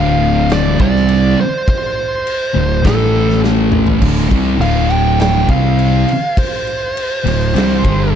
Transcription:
0.00 0.75 D1 loud
0.00 0.77 D2 medium
0.00 0.77 A2 loud
0.00 0.78 D3 loud
0.00 0.54 F5 medium
0.50 0.79 D5 medium
0.50 snare loud
0.50 crash medium
0.77 1.34 C2 loud
0.77 1.36 C3 medium
0.77 1.36 G3 loud
0.77 1.36 C4 loud
0.77 kick loud
0.81 1.40 D5 loud
0.96 snare soft
1.09 crash medium
1.41 1.68 C5 loud
1.68 2.89 C5 loud
1.68 kick loud
1.68 crash medium
2.27 crash medium
2.54 2.83 D1 medium
2.54 2.78 D2 medium
2.54 2.78 A2 medium
2.83 3.98 A1 loud
2.83 3.99 A2 loud
2.83 4.00 E3 loud
2.83 4.00 A3 loud
2.83 3.40 A4 medium
2.83 kick loud
2.83 crash medium
2.87 snare loud
3.30 snare soft
3.44 snare medium
3.72 mid tom loud
3.87 floor tom loud
4.00 4.29 D1 medium
4.00 4.28 D2 medium
4.00 4.28 A2 loud
4.00 4.29 D3 loud
4.00 kick loud
4.00 crash loud
4.00 crash medium
4.19 snare soft
4.29 4.59 C2 loud
4.29 4.56 C3 medium
4.29 4.56 G3 medium
4.29 4.58 C4 loud
4.29 kick loud
4.29 crash medium
4.56 5.44 D1 loud
4.56 5.46 D2 medium
4.56 5.46 A2 medium
4.56 5.47 D3 loud
4.61 5.49 A2 medium
4.61 5.49 D3 loud
4.61 4.92 F5 medium
4.61 crash medium
4.90 5.19 G5 medium
4.90 crash medium
5.20 5.49 G5 medium
5.20 snare loud
5.20 crash medium
5.47 6.04 C2 medium
5.47 6.06 C3 loud
5.47 6.06 G3 medium
5.47 6.06 C4 medium
5.47 6.35 F5 medium
5.47 kick loud
5.47 crash medium
5.79 crash medium
6.08 crash medium
6.37 8.11 C5 medium
6.37 kick loud
6.37 crash medium
6.67 crash medium
6.97 crash medium
7.24 7.53 D1 medium
7.24 7.48 D2 medium
7.24 7.49 A2 medium
7.24 crash loud
7.53 7.82 C2 loud
7.53 7.82 C3 medium
7.53 7.82 G3 loud
7.53 7.83 C4 loud
7.53 crash medium
7.58 snare loud
7.83 8.15 G1 loud
7.83 8.15 G2 loud
7.83 8.15 D3 loud
7.83 8.15 G3 loud
7.83 kick loud
7.83 crash medium

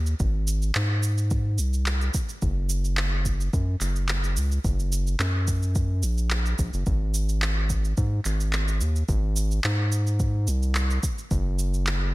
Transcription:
0.00 0.15 D#2 medium
0.06 cabasa soft
0.20 0.71 G#1 loud
0.20 kick loud
0.20 cabasa soft
0.47 cabasa medium
0.62 cabasa soft
0.75 1.60 G#2 medium
0.75 clap loud
0.75 cabasa soft
1.03 cabasa medium
1.18 cabasa soft
1.31 kick loud
1.31 cabasa soft
1.58 2.10 C2 medium
1.58 cabasa medium
1.73 cabasa soft
1.86 clap loud
1.86 cabasa soft
2.01 cabasa soft
2.14 kick loud
2.14 cabasa medium
2.29 cabasa soft
2.42 3.49 F#1 loud
2.42 kick loud
2.42 cabasa soft
2.69 cabasa medium
2.85 cabasa soft
2.97 clap loud
2.97 cabasa soft
3.26 kick medium
3.26 cabasa medium
3.41 cabasa soft
3.53 3.76 F#2 medium
3.53 kick loud
3.53 cabasa soft
3.81 4.38 F#1 medium
3.81 clap soft
3.81 cabasa medium
3.96 cabasa soft
4.09 clap loud
4.09 cabasa soft
4.24 cabasa soft
4.37 4.59 C#2 medium
4.37 cabasa medium
4.52 cabasa soft
4.65 5.16 F#1 loud
4.65 kick loud
4.65 cabasa soft
4.80 cabasa soft
4.92 cabasa medium
5.07 cabasa soft
5.19 6.05 F#2 medium
5.19 clap loud
5.19 cabasa soft
5.48 kick medium
5.48 cabasa medium
5.63 cabasa soft
5.75 kick loud
5.75 cabasa soft
6.03 6.55 A#1 medium
6.03 cabasa medium
6.18 cabasa soft
6.30 clap loud
6.30 cabasa soft
6.46 cabasa soft
6.59 6.71 A#1 medium
6.59 kick loud
6.59 cabasa medium
6.73 6.84 F#1 medium
6.73 cabasa soft
6.86 7.94 G#1 loud
6.86 kick loud
6.86 cabasa soft
7.14 cabasa medium
7.29 cabasa soft
7.42 clap loud
7.42 cabasa soft
7.70 kick medium
7.70 cabasa medium
7.85 cabasa soft
7.97 8.20 G#2 medium
7.97 kick loud
7.97 cabasa soft
8.25 8.82 G#1 medium
8.25 clap soft
8.25 cabasa medium
8.40 cabasa soft
8.53 clap medium
8.53 cabasa soft
8.68 cabasa soft
8.81 9.04 D#2 medium
8.81 cabasa medium
8.96 cabasa soft
9.09 9.60 G#1 loud
9.09 kick loud
9.09 cabasa soft
9.36 cabasa medium
9.51 cabasa soft
9.64 10.49 G#2 medium
9.64 clap loud
9.64 cabasa soft
9.92 cabasa medium
10.07 cabasa soft
10.20 kick loud
10.20 cabasa soft
10.47 10.99 C2 medium
10.47 cabasa medium
10.63 cabasa soft
10.75 clap medium
10.75 cabasa soft
10.90 cabasa soft
11.03 kick loud
11.03 cabasa medium
11.18 cabasa soft
11.31 12.14 F#1 loud
11.31 kick loud
11.31 cabasa soft
11.59 cabasa medium
11.74 cabasa soft
11.87 clap loud
11.87 cabasa soft

